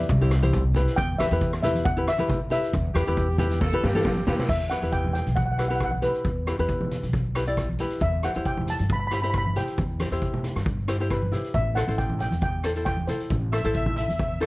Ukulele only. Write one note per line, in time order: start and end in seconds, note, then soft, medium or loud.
0.21 0.34 E4 medium
0.21 0.34 G4 medium
0.21 0.34 C5 medium
0.43 0.62 E4 medium
0.43 0.62 G4 medium
0.43 0.63 C5 loud
0.76 0.97 E4 medium
0.76 0.97 G4 medium
0.76 0.98 B4 medium
1.20 1.27 E4 medium
1.20 1.27 G4 medium
1.20 1.27 B4 medium
1.32 1.51 E4 medium
1.32 1.51 G4 medium
1.32 1.51 B4 medium
1.64 1.83 E4 medium
1.64 1.83 G4 medium
1.64 1.84 B4 medium
1.97 2.09 E4 medium
1.97 2.10 G4 medium
1.97 2.10 B4 medium
2.18 2.38 E4 medium
2.18 2.39 G4 medium
2.18 2.39 B4 medium
2.51 2.73 E4 medium
2.51 2.73 G4 medium
2.51 2.73 B4 medium
2.95 3.02 E4 medium
2.95 3.02 G4 medium
2.95 3.02 B4 medium
3.07 3.26 E4 medium
3.07 3.27 G4 medium
3.07 3.27 B4 medium
3.39 3.59 E4 medium
3.39 3.59 G4 medium
3.39 3.59 B4 medium
3.73 3.85 E4 medium
3.73 3.85 G4 medium
3.73 3.86 B4 medium
3.95 4.14 E4 medium
3.95 4.14 G4 medium
3.95 4.15 A4 loud
4.27 4.49 E4 medium
4.27 4.49 G4 medium
4.27 4.49 B4 medium
4.71 4.78 E4 medium
4.71 4.78 G4 medium
4.71 4.78 B4 medium
4.82 5.28 E4 medium
4.82 5.29 G4 medium
4.82 5.29 B4 medium
5.59 5.66 E4 medium
5.59 5.66 G4 medium
5.59 5.66 B4 medium
5.70 5.90 E4 medium
5.70 5.90 G4 medium
5.70 5.90 B4 medium
6.02 6.29 E4 medium
6.02 6.29 G4 medium
6.02 6.30 B4 medium
6.47 6.54 E4 medium
6.47 6.54 G4 medium
6.47 6.55 B4 medium
6.59 7.05 E4 medium
6.59 7.05 G4 medium
6.59 7.05 B4 medium
7.36 7.42 E4 medium
7.36 7.43 G4 medium
7.36 7.43 B4 medium
7.47 7.67 E4 medium
7.47 7.67 G4 medium
7.47 7.67 D5 medium
7.80 8.02 E4 medium
7.80 8.02 G4 medium
7.80 8.02 B4 medium
8.24 8.31 E4 medium
8.24 8.31 G4 medium
8.24 8.31 C5 medium
8.36 8.81 E4 medium
8.36 8.82 G4 medium
8.36 8.82 C5 medium
9.12 9.19 E4 medium
9.12 9.19 G4 medium
9.12 9.19 C5 medium
9.23 9.43 E4 medium
9.23 9.43 G4 medium
9.23 9.43 C5 medium
9.56 9.83 E4 medium
9.56 9.83 G4 medium
9.56 9.83 C5 medium
10.00 10.07 E4 medium
10.00 10.07 G4 medium
10.00 10.07 C5 medium
10.12 10.58 E4 medium
10.12 10.58 G4 medium
10.12 10.58 C5 medium
10.88 10.95 E4 medium
10.88 10.95 G4 medium
10.88 10.96 C5 medium
11.00 11.20 E4 medium
11.00 11.20 G4 medium
11.00 11.10 C5 medium
11.11 11.51 B4 medium
11.32 11.54 E4 medium
11.32 11.54 G4 medium
11.32 11.54 C5 medium
11.76 11.83 E4 medium
11.76 11.84 A4 medium
11.76 11.84 C5 medium
11.87 12.34 E4 medium
11.87 12.34 A4 medium
11.87 12.34 C5 medium
12.64 12.71 E4 medium
12.64 12.72 A4 medium
12.64 12.72 C5 medium
12.76 12.96 E4 medium
12.76 12.96 A4 medium
12.76 12.96 C5 medium
13.08 13.35 E4 medium
13.08 13.35 A4 medium
13.08 13.36 C5 medium
13.52 13.60 E4 medium
13.52 13.60 A4 medium
13.52 13.60 C5 medium
13.64 14.11 E4 medium
13.64 14.11 A4 medium
13.64 14.11 C5 loud
14.40 14.46 E4 medium
14.40 14.46 A4 medium
14.40 14.46 C5 medium